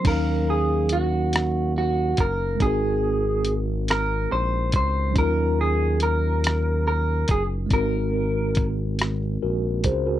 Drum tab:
CC |x-----|------|------|------|
HH |x-xx-x|x-xx-x|x-xx-x|x-xx-x|
SD |---r--|---r--|---r--|---r--|
BD |o----o|o----o|o----o|o-o--o|